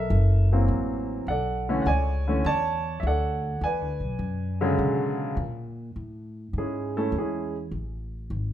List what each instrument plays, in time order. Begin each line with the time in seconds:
Already playing: grand piano A4 A#4 E5
0.10 upright bass F#1
0.52 grand piano E3 F#3 A#3 C4
0.68 upright bass A1
1.27 upright bass B1, grand piano A4 D5 F#5
1.69 grand piano D3 E3 A3 C#4
1.82 upright bass C#2, grand piano F#5
1.87 grand piano C#5 D5 G#5
2.28 grand piano D3 E3 A3 C#4
2.45 upright bass E2, grand piano C#5 D5 A5
3.00 upright bass D2, grand piano E5
3.07 grand piano A4 D5 F#5
3.61 upright bass E2, grand piano B4 D5 G#5
3.81 upright bass D2
4.00 upright bass B1
4.19 upright bass F#2
4.61 grand piano C#3 D3 F#3 G#3
4.79 upright bass B2
5.37 upright bass A#2
5.96 upright bass A2
6.53 upright bass G#2
6.58 grand piano G#3 C#4 E4 G#4
6.97 grand piano A3 C#4 E4 A4
7.12 upright bass E2
7.18 grand piano G#3 C#4 E4 G#4
7.71 upright bass A1
8.30 upright bass G#1